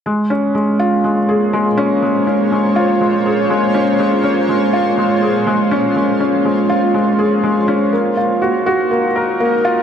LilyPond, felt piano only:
\new Staff \with { instrumentName = "Felt piano" } { \time 4/4 \key bes \minor \tempo 4 = 122 aes8 des'8 aes8 f'8 aes8 aes'8 aes8 des'8 | aes8 des'8 aes8 f'8 aes8 aes'8 aes8 des'8 | aes8 des'8 aes8 f'8 aes8 aes'8 aes8 des'8 | aes8 des'8 aes8 f'8 aes8 aes'8 aes8 des'8 |
bes8 f'8 ges'8 ges'8 bes8 bes'8 bes8 f'8 | }